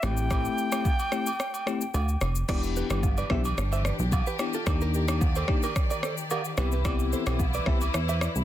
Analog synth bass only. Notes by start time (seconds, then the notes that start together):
0.03 A1
1.94 D2
2.21 F1
2.49 E1
2.90 G1
3.31 B1
3.58 G1
3.99 B1
4.67 D#2
6.58 C2
7.27 B1
7.67 C2
7.94 E2
8.36 C2